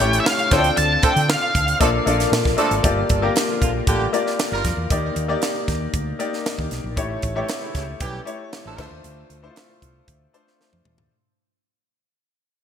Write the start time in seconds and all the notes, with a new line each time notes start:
Already playing: G5
0.00 A1 A3 C#4 E4 G4 C#5, closed hi-hat
0.13 closed hi-hat
0.20 E5
0.26 F5, snare
0.39 closed hi-hat
0.51 D2 F3 A3 C4 D4 F4 A4 C#5 G5, kick, snare, closed hi-hat
0.58 D5
0.64 closed hi-hat
0.77 D2 A5, closed hi-hat
1.03 F3 A3 D4 A4 G5, kick, closed hi-hat
1.16 D3, closed hi-hat
1.30 F5, snare
1.55 D2, kick, closed hi-hat
1.68 closed hi-hat
1.80 A#1 F3 A3 A#3 D4 F4 A4 D5, kick, closed hi-hat
2.06 A#1 A#3 D4 F4 A4 D5, closed hi-hat
2.20 snare, closed hi-hat
2.32 A#2, snare
2.45 A#1, kick, snare
2.57 F3 A3 A#3 D4 F4 A4 D5, closed hi-hat
2.71 G#1, closed hi-hat
2.83 G1 A#3 F4 G4 D5, kick, closed hi-hat
3.09 G1, kick, closed hi-hat
3.22 D3 G3 A#3 F4 G4 A#4
3.36 snare, closed hi-hat
3.49 D3 F3 A#3 F4
3.62 A#1 D3 F3 A#3 F4, kick, closed hi-hat
3.87 A1 D3 G3 A#3 G4, kick, closed hi-hat
4.13 A#3 F4 G4 D5, closed hi-hat
4.27 snare
4.39 snare, closed hi-hat
4.52 G1 G3 A#3 F4 A#4
4.64 F2, kick, snare, closed hi-hat
4.77 E2
4.90 D#2 A#3 D#4 G4 D5, kick, closed hi-hat
5.16 D#2, closed hi-hat
5.28 A#3 D#4 G4 D5
5.42 snare, closed hi-hat
5.68 D#2, kick, snare, closed hi-hat
5.94 D2, kick, closed hi-hat
6.19 A#3 D#4 G4 D5, closed hi-hat
6.33 snare
6.46 snare, closed hi-hat
6.58 D#2, kick
6.71 B1, snare, closed hi-hat
6.84 A#1
6.96 A1 A3 E4 G4 C#5, kick, closed hi-hat
7.22 A1, kick, closed hi-hat
7.35 E3 G3 A3 C#4 E4 G4 C#5
7.48 snare, closed hi-hat
7.63 C#3 E3 A3 E4
7.75 C#2 C#3 E3 A3 E4, kick, snare, closed hi-hat
8.00 B1 E3 G3 C#4 G4, kick, closed hi-hat
8.25 A3 E4 G4 C#5, closed hi-hat
8.53 snare, closed hi-hat
8.66 A1 F3 A3 D4 A4
8.78 D2 A3 D4 F4 C5, kick, snare, crash
8.91 D#2
9.04 D2, closed hi-hat
9.30 D2, closed hi-hat
9.42 A3 D4 E4 C5
9.50 F4
9.56 snare, closed hi-hat
9.82 C2, kick, closed hi-hat
10.08 D2, kick, closed hi-hat
10.33 A3 D4 F4 C5, closed hi-hat
10.47 snare
10.61 snare
10.73 F2, high tom
10.85 E2, mid tom
10.98 D#2, floor tom